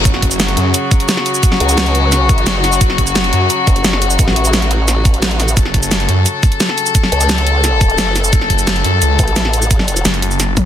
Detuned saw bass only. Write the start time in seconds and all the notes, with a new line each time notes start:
0.05 F#1
0.57 F#2
2.81 F#1
3.33 F#2
5.57 F#1
6.09 F#2
8.33 F#1
8.84 F#2
9.02 C#2
10.05 F#1